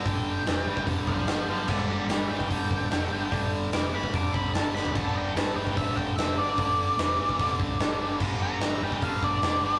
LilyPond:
<<
  \new Staff \with { instrumentName = "Lead electric guitar" } { \time 4/4 \key g \mixolydian \tempo 4 = 147 g''2 r8 <f'' a''>8 <f'' a''>8 <f'' a''>8 | <g'' b''>8 <g'' b''>8 <g'' b''>8 g''2~ g''8~ | g''8 r8 d'''8 b''8 d'''8 b''8 a''8 b''8 | a''8 g''8 a''8 g''8 e''8 g''8 e''8 d''8~ |
d''2~ d''8 r4. | r8 bes''4 g''8 f''8 d''4. | }
  \new Staff \with { instrumentName = "Distorted electric guitar" } { \clef bass \time 4/4 \key g \mixolydian <g, d>4 <g, e>8 <g, e>8 <g, d>4 <g, d>8 <g, d>8 | <g, d>4 <g, e>8 <g, e>8 <g, d>4 <g, d>8 <g, d>8 | <g, d>4 <g, e>8 <g, e>8 <g, d>4 <g, d>8 <g, d>8 | <g, d>4 <g, e>8 <g, e>8 <g, d>4 <g, d>8 <g, d>8 |
<g, d>4 <g, e>8 <g, e>8 <g, d>4 <g, d>8 <g, d>8 | <g, d>4 <g, e>8 <g, e>8 <g, d>4 <g, d>8 <g, d>8 | }
  \new Staff \with { instrumentName = "Picked electric bass" } { \clef bass \time 4/4 \key g \mixolydian g,,8 g,,8 f,,8 g,,8 f,,8 c,8 g,,8 g,,8 | g,,8 g,,8 g,,8 g,,8 g,,8 g,,8 f,,8 g,,8 | g,,8 g,,8 f,,8 g,,8 f,,8 c,8 g,,8 g,,8 | g,,8 g,,8 g,,8 g,,8 g,,8 g,,8 f,,8 g,,8 |
g,,8 g,,8 f,,8 g,,8 f,,8 c,8 g,,8 g,,8 | g,,8 g,,8 g,,8 g,,8 g,,8 r8 f,,8 g,,8 | }
  \new DrumStaff \with { instrumentName = "Drums" } \drummode { \time 4/4 <hho bd>4 <hho sn>8. bd16 <hho bd>8 bd8 <hho sn>4 | <cymc bd>4 <hho sn>8. bd16 <hho bd>8 bd8 <hho sn>4 | <hho bd>4 <hho sn>8. bd16 <hho bd>8 bd8 <hho sn>8 sn16 tomfh16 | <cymc bd>4 <hho sn>8. bd16 <hho bd>8 bd8 <hho sn>4 |
<hho bd>4 <hho sn>8. bd16 <hho bd>8 bd8 <hho sn>4 | <cymc bd>4 <hho sn>8. bd16 <hho bd>8 bd8 <hho sn>4 | }
>>